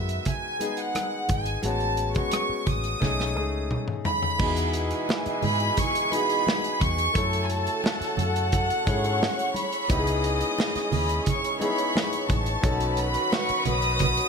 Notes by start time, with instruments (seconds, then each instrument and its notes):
Already playing: fingered electric bass F#2, grand piano D#3 G#3 B3 F#4, violin section E5
0.09 closed hi-hat
0.25 violin section G#5, kick, closed hi-hat, muted conga, low conga
0.59 grand piano G#3 B3 D#4 G#4, closed hi-hat, muted conga
0.77 violin section F#5, closed hi-hat
0.95 cross-stick, closed hi-hat, high conga
1.29 fingered electric bass G#1, violin section G#5, kick, closed hi-hat, high conga
1.46 closed hi-hat
1.62 fingered electric bass A1, grand piano G#3 B3 C#4 F#4, violin section A5, closed hi-hat, muted conga
1.80 closed hi-hat
1.97 closed hi-hat
2.14 grand piano G#3 B3 C#4 F#4, violin section C#6, kick, closed hi-hat
2.31 cross-stick, closed hi-hat, high conga
2.49 muted fingered electric bass stroke
2.67 fingered electric bass A1, violin section D#6, kick, closed hi-hat, low conga
2.84 closed hi-hat
3.00 fingered electric bass B1, grand piano A3 C#4 D#4 G#4, kick, snare, muted conga, low conga
3.20 snare
3.35 fingered electric bass C#2, grand piano A3 C#4 D#4 G#4, muted conga
3.71 mid tom, high conga
3.88 mid tom
4.05 violin section B5, floor tom, high conga
4.23 floor tom
4.38 fingered electric bass E2, horn section B2 E3 G#3 E4, grand piano B3 D#4 F#4 G#4, string section G#4 G#5, kick, crash, muted conga
4.57 closed hi-hat
4.74 closed hi-hat
4.91 closed hi-hat
5.09 snare, high conga
5.26 muted fingered electric bass stroke, closed hi-hat
5.42 fingered electric bass G#2, violin section B5, open hi-hat, low conga
5.60 closed hi-hat
5.77 violin section C#6, kick, closed hi-hat, muted conga, low conga
5.95 closed hi-hat
6.11 grand piano B3 D#4 F#4 G#4, violin section B5, closed hi-hat, muted conga
6.30 closed hi-hat
6.47 snare, high conga
6.64 closed hi-hat
6.80 fingered electric bass E2, violin section C#6, kick, closed hi-hat, high conga
6.98 closed hi-hat
7.14 fingered electric bass F#2, horn section C#3 A3 F#4 A4, grand piano A3 C#4 E4 A4, string section A4 A5, kick, closed hi-hat, muted conga
7.33 closed hi-hat
7.44 violin section G#5
7.50 violin section A5, closed hi-hat, muted conga
7.67 closed hi-hat
7.84 violin section F#5, snare, high conga
8.01 muted fingered electric bass stroke, snare, closed hi-hat
8.17 fingered electric bass F#2, violin section F#5, closed hi-hat, low conga
8.36 closed hi-hat
8.52 kick, closed hi-hat, muted conga
8.70 closed hi-hat
8.85 fingered electric bass G#2, grand piano C#4 E4 G#4 A4, string section C#5 C#6, kick, closed hi-hat, muted conga
9.04 closed hi-hat
9.22 snare, high conga
9.39 closed hi-hat
9.55 violin section B5, closed hi-hat, high conga
9.72 closed hi-hat
9.88 fingered electric bass C#2, horn section G#3 C#4 E4 G#4, grand piano B3 D#4 E4 G4, string section D#5 D#6, kick, closed hi-hat, muted conga
9.98 grand piano G#4
10.07 closed hi-hat
10.24 closed hi-hat
10.41 closed hi-hat
10.58 snare, high conga
10.75 muted fingered electric bass stroke, snare, closed hi-hat
10.92 fingered electric bass D#2, violin section B5, open hi-hat, low conga
11.09 closed hi-hat
11.26 string section C#5 C#6, violin section C#6, kick, closed hi-hat, muted conga, low conga
11.44 closed hi-hat
11.59 grand piano B3 D#4 E4 G#4, violin section B5, closed hi-hat, muted conga
11.78 closed hi-hat
11.96 snare, high conga
12.13 closed hi-hat
12.29 fingered electric bass A1, violin section A5, kick, closed hi-hat, high conga
12.46 closed hi-hat
12.61 fingered electric bass B1, horn section D#3 F#3 C#4 F#4, grand piano C#4 D#4 F#4 A4, string section B4 B5, kick, closed hi-hat, muted conga
12.80 closed hi-hat
12.97 violin section B5, closed hi-hat, muted conga
13.14 closed hi-hat
13.32 violin section C#6, snare, high conga
13.49 muted fingered electric bass stroke, closed hi-hat
13.65 fingered electric bass B1, violin section D#6, closed hi-hat, low conga
13.82 closed hi-hat
13.99 kick, closed hi-hat, muted conga, low conga
14.17 closed hi-hat